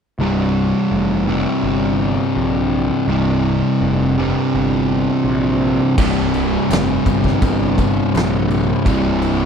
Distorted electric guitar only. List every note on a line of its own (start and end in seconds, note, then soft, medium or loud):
0.20 1.29 C2 medium
0.20 1.26 G2 medium
0.20 1.27 C3 medium
1.27 3.07 C2 medium
1.27 3.07 G2 medium
1.27 3.09 C3 medium
3.08 4.14 C2 medium
3.08 4.15 G2 medium
3.08 4.15 C3 medium
4.18 5.96 C2 medium
4.18 5.96 G2 medium
4.18 5.96 C3 medium
5.97 8.85 C2 medium
5.97 8.83 G2 medium
5.97 8.88 C3 medium
8.86 9.45 C2 medium
8.86 9.45 G2 loud
8.86 9.45 C3 loud